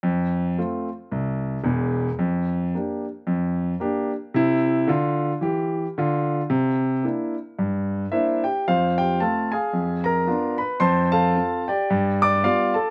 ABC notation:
X:1
M:4/4
L:1/8
Q:"Swing" 1/4=111
K:F
V:1 name="Grand piano"
z8 | z8 | z8 | z6 [Ece] [Gg] |
[Fcf] [Gg] [Afa] [_Af_a]2 [Bb]2 [_c_c'] | [cac'] [Afa]2 [Gdg]2 [dd'] [Fdf] [Aa] |]
V:2 name="Grand piano"
F,,2 [A,CF]2 C,,2 [E,,,E,,]2 | F,,2 [B,DG]2 F,,2 [B,DG]2 | [C,E]2 [D,F]2 [E,G]2 [D,F]2 | C,2 [B,DE]2 G,,2 [B,D]2 |
F,,2 [A,CF]2 F,,2 [_CDF]2 | F,,2 [CF]2 G,,2 [G,=B,]2 |]